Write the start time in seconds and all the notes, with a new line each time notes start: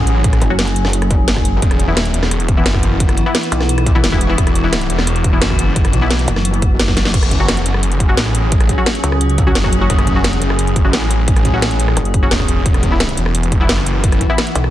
Already playing: A1 F#3 C#4 G#4
0.07 closed hi-hat
0.24 kick, closed hi-hat
0.33 cross-stick, closed hi-hat
0.42 F#1, closed hi-hat
0.50 F#3 C#4 F#4
0.59 snare, closed hi-hat
0.67 closed hi-hat
0.76 closed hi-hat
0.85 cross-stick, snare
0.93 closed hi-hat
1.02 cross-stick, closed hi-hat
1.11 kick, closed hi-hat
1.28 snare, closed hi-hat
1.36 kick, cross-stick
1.45 closed hi-hat
1.62 E1 E3 B3 F#4, kick, closed hi-hat
1.71 cross-stick, closed hi-hat
1.80 closed hi-hat
1.88 E3 B3 E4
1.97 snare, closed hi-hat
2.05 closed hi-hat
2.14 E1, closed hi-hat
2.23 cross-stick, snare
2.31 cross-stick, closed hi-hat
2.40 closed hi-hat
2.49 kick, closed hi-hat
2.57 E3 B3 E4
2.66 F#1, snare, closed hi-hat
2.74 kick, cross-stick
2.83 closed hi-hat
3.00 kick, closed hi-hat
3.09 cross-stick, closed hi-hat
3.18 closed hi-hat
3.26 E3 B3 E4
3.35 snare, closed hi-hat
3.43 closed hi-hat
3.52 B1, closed hi-hat
3.61 cross-stick, snare
3.69 closed hi-hat
3.78 cross-stick, closed hi-hat
3.86 kick, closed hi-hat
3.95 E3 B3 E4
4.04 E1, snare, closed hi-hat
4.12 E3 B3 E4, kick, cross-stick
4.21 closed hi-hat
4.29 E3 B3 E4
4.38 E1, kick, closed hi-hat
4.47 cross-stick, closed hi-hat
4.55 closed hi-hat
4.64 E3 B3 E4
4.73 snare, closed hi-hat
4.81 closed hi-hat
4.90 E1, closed hi-hat
4.99 cross-stick, snare
5.07 cross-stick, closed hi-hat
5.16 closed hi-hat
5.24 kick, closed hi-hat
5.33 E3 B3 E4
5.42 F#1, snare, closed hi-hat
5.50 kick, cross-stick
5.59 closed hi-hat
5.76 kick, closed hi-hat
5.85 cross-stick, closed hi-hat
5.93 B1, closed hi-hat
6.02 E3 B3 E4
6.11 snare, closed hi-hat
6.19 closed hi-hat
6.28 F#1, closed hi-hat
6.36 cross-stick, snare
6.45 closed hi-hat
6.54 closed hi-hat
6.62 kick, closed hi-hat
6.80 F#1, snare, closed hi-hat
6.88 kick, snare
6.97 snare, closed hi-hat
7.05 snare
7.14 F#1 F#3 C#4 G#4, kick, closed hi-hat, crash
7.23 cross-stick, closed hi-hat
7.31 kick, closed hi-hat
7.40 F#3 C#4 F#4
7.48 snare, closed hi-hat
7.57 closed hi-hat
7.66 F#1, closed hi-hat
7.74 cross-stick
7.83 closed hi-hat
7.92 closed hi-hat
8.00 kick, closed hi-hat
8.09 F#3 C#4 F#4
8.17 A1, snare, closed hi-hat
8.26 cross-stick
8.35 closed hi-hat
8.52 kick, closed hi-hat
8.61 cross-stick, closed hi-hat
8.69 kick, closed hi-hat
8.78 F#3 C#4 F#4
8.86 snare, closed hi-hat
8.95 closed hi-hat
9.04 C#2, closed hi-hat
9.12 cross-stick
9.21 closed hi-hat
9.30 closed hi-hat
9.38 kick, closed hi-hat
9.47 F#3 C#4 F#4
9.55 F#1, snare, closed hi-hat
9.64 F#3 C#4 F#4, kick, cross-stick
9.73 closed hi-hat
9.81 F#3 C#4 F#4
9.90 F#1, kick, closed hi-hat
9.99 cross-stick, closed hi-hat
10.07 kick, closed hi-hat
10.16 F#3 C#4 F#4
10.24 snare, closed hi-hat
10.33 closed hi-hat
10.42 F#1, closed hi-hat
10.50 cross-stick
10.59 closed hi-hat
10.67 closed hi-hat
10.76 kick, closed hi-hat
10.85 F#3 C#4 F#4
10.93 A1, snare, closed hi-hat
11.02 cross-stick
11.11 closed hi-hat
11.28 kick, closed hi-hat
11.36 cross-stick, closed hi-hat
11.45 A1, kick, closed hi-hat
11.54 F#3 C#4 F#4
11.62 snare, closed hi-hat
11.71 closed hi-hat
11.80 closed hi-hat
11.88 cross-stick
11.97 F#1, closed hi-hat
12.05 closed hi-hat
12.14 kick, closed hi-hat
12.23 F#3 C#4 F#4
12.31 E1, snare, closed hi-hat
12.40 kick, cross-stick
12.48 closed hi-hat
12.66 E1 E3 B3 F#4, kick, closed hi-hat
12.74 cross-stick, closed hi-hat
12.83 kick, closed hi-hat
12.92 E3 B3 E4
13.00 snare, closed hi-hat
13.09 closed hi-hat
13.17 E1, closed hi-hat
13.26 cross-stick
13.35 closed hi-hat
13.43 closed hi-hat
13.52 kick, closed hi-hat
13.61 E3 B3 E4
13.69 F#1, snare, closed hi-hat
13.78 cross-stick
13.86 closed hi-hat
14.04 kick, closed hi-hat
14.12 cross-stick, closed hi-hat
14.21 kick, closed hi-hat
14.30 E3 B3 E4
14.38 snare, closed hi-hat
14.47 closed hi-hat
14.55 B1, closed hi-hat
14.64 cross-stick